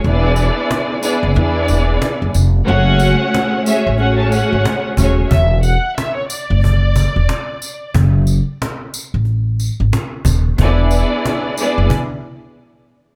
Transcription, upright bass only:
X:1
M:4/4
L:1/16
Q:"Swing 16ths" 1/4=91
K:F#m
V:1 name="Upright bass" clef=bass
E,,,3 z4 F,,, E,,2 E,,,2 z F,,, ^E,,,2 | F,,,3 z4 A,,,4 G,,, z2 ^D,,,2 | E,,,3 z4 F,,,4 E,,, z4 | F,,,3 z4 A,,,4 G,,, z2 ^D,,,2 |
E,,,3 z4 F,,, z8 |]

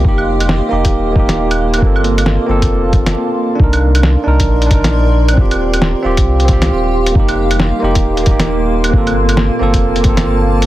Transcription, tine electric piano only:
X:1
M:4/4
L:1/8
Q:"Swing 16ths" 1/4=135
K:Gm
V:1 name="Tine electric piano"
[B,EG]3 [B,EG]2 [B,EG]3 | [B,CFA]3 [B,CFA]2 z3 | [DEB]3 [DEB]2 [DEB]3 | [CFG]3 [CFG]2 [CFG]3 |
[B,EG]3 [B,EG]2 [B,EG]3 | [B,CFA]3 [B,CFA]2 [B,CFA]3 |]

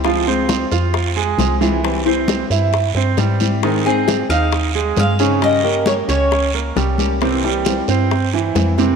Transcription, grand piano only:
X:1
M:4/4
L:1/8
Q:1/4=134
K:Cphr
V:1 name="Grand piano"
[F,F] [Cc]2 [Ff]2 [A,A]2 [=E,=E]- | [=E,=E] [Cc]2 [E=e]2 [Cc] [G,G]2 | [E,E] [Cc]2 [Ee]2 [A,A]2 [D,D]- | [D,D] [B,B]2 [Dd]2 [B,B] [G,G]2 |
[C,C] [G,G]2 [Cc]2 [=E,=E]2 [C,C] |]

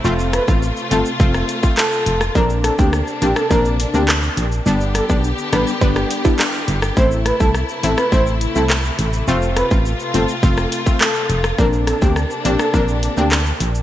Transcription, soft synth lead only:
X:1
M:4/4
L:1/16
Q:1/4=104
K:Flyd
V:1 name="Soft synth lead"
z2 B z3 A z4 z A3 z | _B z A G z2 G A B z2 G z4 | z2 A z3 B z8 z | c z B A z2 A B c z2 A z4 |
z2 B z3 A z4 z A3 z | _B z A G z2 G A B z2 G z4 |]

